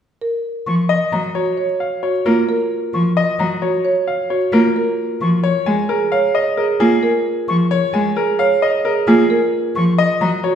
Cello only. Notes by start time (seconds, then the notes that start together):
0.67 F3
1.12 F#3
2.26 A#3
2.94 F3
3.39 F#3
4.53 A#3
5.21 F3
5.67 G#3
6.80 A#3
7.48 F3
7.93 G#3
9.07 A#3
9.76 F3
10.21 F#3